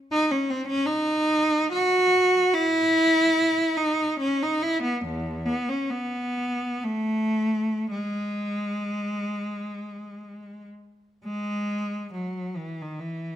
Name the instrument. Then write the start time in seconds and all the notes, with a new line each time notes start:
cello
0.12 D#4
0.31 C#4
0.50 C4
0.68 C#4
0.86 D#4
1.73 F#4
2.54 E4
3.77 D#4
4.20 C#4
4.42 D#4
4.62 E4
4.83 B3
5.05 E2
5.46 B3
5.69 C#4
5.90 B3
6.84 A3
7.91 G#3
11.25 G#3
12.14 F#3
12.57 E3
12.82 D#3
13.00 E3